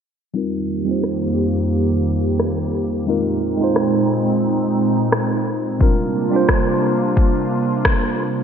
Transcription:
0.34 analog synth pad F2 D#3 A#3 G4, tine electric piano G3 C4 D#4 F4 A#4
0.85 tine electric piano G3 C4 D#4
0.89 tine electric piano F4 C5
1.04 cross-stick
2.40 cross-stick
3.07 analog synth pad A#2 G#3 C4 D#4, tine electric piano G#3 C4 D#4 F4 A#4
3.57 tine electric piano G#3 C4 D#4
3.62 tine electric piano F4 C5
3.76 cross-stick
5.12 cross-stick
5.79 analog synth pad C3 A#3 D4 F4, tine electric piano G3 C4 D4 F4 A#4, kick
6.30 tine electric piano G3 C4 D4
6.35 tine electric piano F4 C5
6.49 kick, cross-stick
7.17 kick
7.85 kick, cross-stick

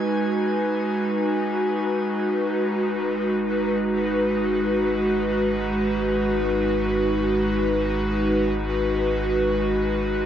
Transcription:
Already playing: analog synth pad G#3 D#4 F#4 B4, synth texture G#5 G#6
1.84 analog synth bass G#1, analog synth pad G#3

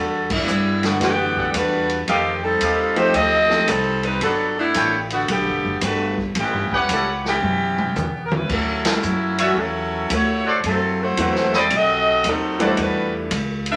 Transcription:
Already playing: upright bass E2, saxophone section G3 D4 F#4 A4
0.30 saxophone section G3 B3 D4 E4, kick, crash
0.47 upright bass G2, hi-hat pedal
0.83 saxophone section D3 G3 B3 F#4, snare, ride
1.00 upright bass F#2, saxophone section D3 B3 F#4 G4, grand piano E3 A3 B3 D4 F#5, kick, snare, ride
1.37 trumpet section G4 A4 D5 F#5, kick
1.54 upright bass E2, saxophone section G3 D4 F#4 B4, kick, hi-hat pedal, ride
1.90 ride
2.08 upright bass F2, saxophone section D#3 A3 C4 G4, trumpet section G4 A4 D#5 F5, kick, ride
2.43 saxophone section G3 C4 D#4 A4
2.61 upright bass D#2, trumpet section G4 A4 D#5 F5, kick, hi-hat pedal, ride
2.96 grand piano F3 A3 C4 D#4 G4, saxophone section A3 D#4 G4 C5, ride
3.14 upright bass D2, saxophone section C4 G4 A4 D#5, kick, ride
3.50 grand piano F3 A3 C4 D#4 G4, snare
3.68 upright bass C2, saxophone section G3 C4 D#4 A4, kick, hi-hat pedal, ride
4.03 saxophone section G3 C4 D#4 B4, ride
4.21 upright bass G1, saxophone section F#3 B3 D4 A4, trumpet section A4 B4 C#5 F#5, kick, ride
4.58 saxophone section A3 B3 D4 E4
4.74 upright bass A1, trumpet section A4 B4 C#5 G5, kick, hi-hat pedal, ride
5.10 saxophone section D3 A3 B3 F#4, ride
5.28 upright bass B1, saxophone section D3 A3 B3 G4, kick, ride
5.47 upright bass G1
5.65 upright bass F#1
5.81 upright bass G1, saxophone section A3 D4 F#4 B4, kick, hi-hat pedal, ride
6.18 kick
6.35 upright bass A1, saxophone section B3 C#4 G4, kick, ride
6.39 saxophone section E3
6.53 upright bass G1
6.71 upright bass E1, saxophone section G3 C#4 E4 B4, trumpet section G4 B4 C#5 F#5, kick
6.89 upright bass C#2, saxophone section G3 C#4 E4 A4, kick, hi-hat pedal, ride
7.25 saxophone section E3 B3 C#4 G4, snare
7.42 upright bass F#2, mid tom
7.78 mid tom
7.96 upright bass E2, hi-hat pedal, high tom
8.25 saxophone section A#4
8.31 saxophone section G3 C#4 E4 B4, high tom
8.49 upright bass D2, saxophone section F#3 C#4 E4 A4, kick, crash
8.85 saxophone section F#3 A3 C#4 E4, snare, ride
9.03 upright bass F#2, hi-hat pedal
9.38 saxophone section E3 A3 C#4 F#4, trumpet section F#4 C#5 D5 E5, ride
9.57 upright bass E2, saxophone section F#3 C#4 E4 A4, kick
10.10 upright bass D2, saxophone section A3 E4 F#4 C#5, kick, hi-hat pedal, ride
10.46 trumpet section F#4 A4 C5 D5
10.64 upright bass F#2, saxophone section F#3 C4 E4 A4, kick, ride
11.02 saxophone section A3 E4 F#4 C5
11.17 upright bass E2, grand piano E3 F#3 A3 C4 F#4, kick, hi-hat pedal, ride
11.35 snare
11.53 trumpet section A4 B4 C5 D#5, snare
11.57 saxophone section C4 E4 G4 D5
11.70 upright bass B1, kick, ride
11.74 saxophone section C4 F#4 A4 D#5
12.24 upright bass D#2, kick, hi-hat pedal, ride
12.29 saxophone section F#3 C4 D#4 A4
12.59 grand piano E3 G3 A3 D4 E4, trumpet section G4 A4 D5 F#5, ride
12.64 saxophone section A3 D#4 F#4 C5
12.77 upright bass E2, kick, ride
12.82 saxophone section G3 D4 F#4 B4
13.31 upright bass C#2, kick, hi-hat pedal, ride
13.66 ride
13.72 saxophone section D4 G4 B4 E5

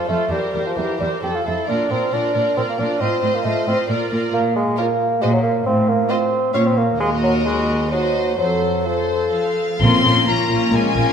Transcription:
0.08 cello section F2, bassoon A3, viola section F4, violin section A4 C5
0.31 cello section E2, bassoon G3, viola section G4, violin section A#4 C5
0.54 cello section E2, viola section G4, violin section A#4 C5
0.66 bassoon F3
0.77 cello section E2, bassoon E3, viola section G4, violin section A#4 C5
0.99 cello section E2, bassoon G3, viola section G4, violin section A#4 C5
1.22 cello section F2, bassoon G4, violin section A4 C5, viola section A4
1.35 bassoon F4
1.44 cello section F2, bassoon E4, violin section A4 C5, viola section A4
1.67 cello section A#2, bassoon D4, viola section F4, violin section A#4 D5
1.90 cello section A#2, bassoon C4, viola section F4, violin section A#4 D5
2.12 cello section A#2, bassoon D4, viola section F4, violin section A#4 D5
2.34 cello section A#2, viola section F4, violin section A#4 D5
2.56 cello section A#2, bassoon C4, viola section F4, violin section A#4 D5
2.69 bassoon A#3
2.78 cello section A#2, bassoon D4, viola section F4, violin section A#4 D5
3.00 cello section A2, bassoon C4, viola section F4, violin section C5 D#5
3.22 cello section A2, viola section F4, violin section C5 D#5
3.35 bassoon A#3
3.44 cello section A2, bassoon A3, viola section F4, violin section C5 D#5
3.67 cello section A2, bassoon C4, viola section F4, violin section C5 D#5
3.89 cello section A#2, viola section F4, violin section A#4 D5
4.11 cello section A#2, viola section F4, violin section A#4 D5
4.33 cello section A#2, bassoon A#3
4.56 bassoon G#3
4.77 bassoon A#3, viola section F4, violin section A#4 C#5
5.22 cello section A#2, bassoon G#3, viola section F#4, violin section C5 D#5
5.33 bassoon F#3
5.43 bassoon A#3
5.66 cello section A2, bassoon C4
5.89 bassoon A#3
6.09 bassoon C4, viola section F4, violin section C5 D#5
6.54 cello section A#2, bassoon C#4, viola section F4, violin section C#5 F5
6.66 bassoon C4
6.78 bassoon A#3
6.99 cello section D#2, bassoon G#3, viola section F#4, violin section A#4 D#5
7.23 bassoon F#3
7.46 bassoon G#3
7.90 bassoon F#3, viola section F#4, violin section C5 D#5
8.38 cello section F2, bassoon F#3, viola section A4, violin section C5
8.85 bassoon F3, viola section A4, violin section C5
9.33 cello section F3, violin section F5
9.80 double bass section A#1, timpani A#2, viola section A#3 C#4, cello section C4, french horn section C#4 F4, violin section F4 A#4 C6
10.04 double bass section A#1, viola section A#3 C#4, violin section F4 A#4
10.27 double bass section A#1, cello section A#3, viola section A#3 C#4, french horn section C#4 F4, violin section F4 A#4 A#5
10.50 double bass section A#1, viola section A#3 C#4, violin section F4 A#4
10.72 double bass section A#1, cello section G#3, viola section A#3 C#4, french horn section C4, violin section F4 A#4 G#5
10.95 double bass section A#1, viola section A#3 C#4, violin section F4 A#4

